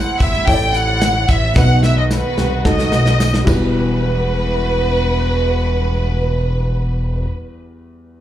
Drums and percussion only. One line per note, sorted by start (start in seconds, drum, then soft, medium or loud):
0.20 kick medium
0.20 hi-hat pedal medium
0.20 open hi-hat medium
0.20 tambourine soft
0.34 snare soft
0.47 kick medium
0.47 hi-hat pedal medium
0.47 open hi-hat loud
0.47 tambourine soft
0.74 hi-hat pedal medium
0.74 open hi-hat medium
0.74 tambourine medium
1.01 snare loud
1.01 hi-hat pedal medium
1.01 open hi-hat medium
1.01 tambourine medium
1.28 kick medium
1.28 hi-hat pedal medium
1.28 open hi-hat medium
1.28 tambourine soft
1.56 kick loud
1.56 snare medium
1.56 tambourine medium
1.83 snare medium
1.83 tambourine medium
2.11 snare medium
2.11 tambourine loud
2.38 snare medium
2.38 tambourine soft
2.65 kick medium
2.65 snare medium
2.79 snare medium
2.92 snare medium
2.92 tambourine medium
3.06 snare medium
3.20 snare loud
3.20 tambourine medium
3.34 snare medium
3.47 kick loud
3.47 crash medium
3.47 tambourine medium